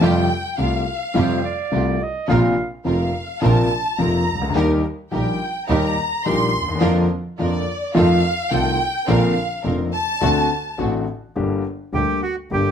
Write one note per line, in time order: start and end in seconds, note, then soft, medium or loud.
0.01 0.25 F2 medium
0.01 0.25 C3 medium
0.01 0.25 F3 medium
0.01 0.25 G3 medium
0.01 0.25 A3 medium
0.01 0.25 F4 medium
0.01 0.26 G4 medium
0.01 0.59 G5 medium
0.58 0.82 C2 soft
0.58 0.83 C2 medium
0.58 0.82 C3 soft
0.58 0.82 G3 soft
0.58 0.82 A3 soft
0.58 0.83 A3 soft
0.58 0.82 F4 soft
0.58 0.83 F4 soft
0.58 0.82 G4 soft
0.58 1.72 F5 medium
1.14 1.39 F2 medium
1.14 1.40 F2 medium
1.14 1.39 C3 medium
1.14 1.39 F3 medium
1.14 1.39 G3 medium
1.14 1.39 A3 medium
1.14 1.39 F4 medium
1.14 1.39 G4 medium
1.14 1.41 C5 medium
1.45 2.04 D5 medium
1.72 1.96 C2 medium
1.72 1.96 C3 medium
1.72 1.96 G3 soft
1.72 1.96 A3 soft
1.72 1.96 F4 soft
1.72 1.97 F4 soft
1.72 1.97 G4 medium
2.03 2.29 D#5 medium
2.28 2.53 A#1 medium
2.28 2.54 A#1 medium
2.28 2.53 A#2 medium
2.28 2.53 C3 medium
2.28 2.53 F3 medium
2.28 2.53 A#3 medium
2.28 2.53 C4 medium
2.28 2.53 F4 medium
2.28 2.53 A#4 medium
2.28 2.69 F5 medium
2.85 3.10 F1 soft
2.85 3.10 F1 medium
2.85 3.10 F2 soft
2.85 3.09 C3 soft
2.85 3.09 F3 soft
2.85 3.10 A#3 soft
2.85 3.10 C4 soft
2.85 3.10 F4 soft
2.85 3.10 A#4 medium
2.85 3.40 F5 medium
3.41 3.66 A#1 medium
3.41 3.67 A#1 medium
3.41 3.66 A#2 medium
3.41 3.66 C3 medium
3.41 3.66 F3 medium
3.41 3.66 A#3 medium
3.41 3.66 C4 medium
3.41 3.66 F4 medium
3.41 3.67 F4 medium
3.41 3.67 A#4 medium
3.41 3.99 A5 medium
3.97 4.23 F1 medium
3.97 4.24 F1 medium
3.97 4.23 F2 medium
3.97 4.23 C3 soft
3.97 4.23 F3 soft
3.97 4.23 A#3 soft
3.97 4.23 C4 soft
3.97 4.23 F4 medium
3.97 4.23 F4 soft
3.97 4.24 A#4 medium
3.97 4.55 A#5 medium
4.28 4.56 C#2 medium
4.35 4.42 C2 soft
4.41 4.49 C#2 medium
4.49 4.56 D2 medium
4.55 4.80 D#2 medium
4.55 4.81 D#2 medium
4.55 4.80 D#3 medium
4.55 4.80 G3 medium
4.55 4.80 A#3 medium
4.55 4.80 D#4 medium
4.55 4.80 G4 medium
4.55 4.80 A#4 medium
5.11 5.36 A#1 soft
5.11 5.37 A#1 medium
5.11 5.36 A#2 soft
5.11 5.36 D#3 soft
5.11 5.36 G3 soft
5.11 5.36 A#3 soft
5.11 5.37 D#4 soft
5.11 5.36 G4 soft
5.11 5.36 A#4 medium
5.11 5.65 G5 medium
5.68 5.93 D#2 medium
5.68 5.94 D#2 medium
5.68 5.93 D#3 medium
5.68 5.93 G3 medium
5.68 5.93 A#3 medium
5.68 5.93 D#4 medium
5.68 5.93 G4 medium
5.68 5.93 A#4 medium
5.68 6.21 A#5 medium
6.24 6.50 A#1 medium
6.24 6.51 A#1 medium
6.24 6.50 A#2 medium
6.24 6.50 D#3 medium
6.24 6.50 G3 soft
6.24 6.50 A#3 soft
6.24 6.49 D#4 medium
6.24 6.49 G4 soft
6.24 6.50 G4 medium
6.24 6.50 A#4 medium
6.24 6.82 C6 loud
6.56 6.82 D#2 medium
6.61 6.69 D2 soft
6.68 6.75 D#2 medium
6.75 6.82 E2 medium
6.81 7.06 F2 medium
6.81 7.06 D3 medium
6.81 7.06 F3 medium
6.81 7.06 A#3 medium
6.81 7.06 D4 medium
6.81 7.06 F4 medium
6.81 7.06 A#4 medium
7.39 7.63 F2 medium
7.39 7.63 D3 soft
7.39 7.63 F3 soft
7.39 7.63 A#3 soft
7.39 7.63 D4 soft
7.39 7.63 F4 soft
7.39 7.63 A#4 medium
7.39 7.92 D5 medium
7.94 8.19 F2 medium
7.94 8.20 F2 medium
7.94 8.19 D#3 medium
7.94 8.19 F3 medium
7.94 8.19 A3 medium
7.94 8.19 C4 medium
7.94 8.19 D#4 medium
7.94 8.19 F4 medium
7.94 8.19 A4 medium
7.94 8.53 F5 loud
8.51 8.75 C2 medium
8.51 8.76 C2 medium
8.51 8.76 C3 medium
8.51 8.75 D#3 medium
8.51 8.76 A3 soft
8.51 8.76 C4 soft
8.51 8.75 D#4 soft
8.51 8.75 F4 soft
8.51 8.76 F4 medium
8.51 8.76 A4 medium
8.51 9.08 G5 loud
9.07 9.32 A#1 medium
9.07 9.32 A#2 medium
9.07 9.32 D3 medium
9.07 9.32 A#3 medium
9.07 9.32 C4 medium
9.07 9.32 D4 medium
9.07 9.32 F4 medium
9.07 9.32 A#4 medium
9.07 9.66 F5 medium
9.64 9.89 F1 soft
9.64 9.89 F1 medium
9.64 9.89 F2 soft
9.64 9.89 D3 soft
9.64 9.89 A#3 soft
9.64 9.89 C4 soft
9.64 9.89 D4 soft
9.64 9.89 F4 soft
9.64 9.89 A#4 medium
9.94 10.76 A5 loud
10.21 10.46 D2 medium
10.21 10.46 D3 medium
10.21 10.46 A3 medium
10.21 10.46 C4 medium
10.21 10.46 D4 medium
10.21 10.46 F#4 medium
10.78 11.03 A1 medium
10.78 11.04 A1 medium
10.78 11.03 A2 medium
10.78 11.03 D3 soft
10.78 11.03 A3 soft
10.78 11.03 C4 soft
10.78 11.03 C4 medium
10.78 11.03 D4 soft
10.78 11.03 F#4 soft
10.78 11.04 F#4 soft
11.36 11.61 G1 medium
11.36 11.61 G2 medium
11.36 11.61 D3 medium
11.36 11.61 G3 soft
11.36 11.61 A#3 soft
11.36 11.61 G4 medium
11.92 12.18 D2 medium
11.92 12.18 D3 medium
11.92 12.18 G3 soft
11.92 12.18 A#3 soft
11.92 12.18 G4 soft
11.92 12.21 G4 medium
12.23 12.36 F#4 medium
12.51 12.71 G1 medium
12.51 12.71 G2 medium
12.51 12.71 D3 soft
12.51 12.71 G3 soft
12.51 12.71 A#3 soft
12.51 12.71 G4 soft
12.51 12.71 G4 medium